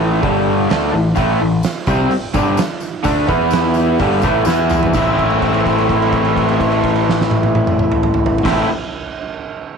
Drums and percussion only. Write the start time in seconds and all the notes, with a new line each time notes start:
0.23 kick, open hi-hat
0.70 snare, open hi-hat
1.16 kick, open hi-hat, tambourine
1.63 snare, open hi-hat, tambourine
1.87 kick, tambourine
2.11 open hi-hat, tambourine
2.34 kick, tambourine
2.57 snare, open hi-hat, tambourine
2.80 tambourine
3.04 kick, open hi-hat, tambourine
3.27 kick, tambourine
3.51 snare, open hi-hat, tambourine
3.74 tambourine
3.98 kick, open hi-hat, tambourine
4.22 kick, tambourine
4.45 snare, tambourine
4.69 mid tom, tambourine
4.83 floor tom
4.93 kick, crash, tambourine
5.18 kick, crash
5.30 crash
5.42 kick, crash
5.54 crash
5.66 kick, crash
5.78 crash
5.89 kick, crash
6.02 crash
6.12 kick, crash
6.25 crash
6.36 kick, crash
6.48 crash
6.60 kick, crash
6.72 crash
6.84 kick, crash
6.95 crash
7.09 snare
7.21 snare
7.31 high tom
7.43 high tom
7.55 high tom
7.67 mid tom
7.79 mid tom
7.92 mid tom
8.03 mid tom
8.14 mid tom
8.26 floor tom
8.38 floor tom
8.45 kick, snare, crash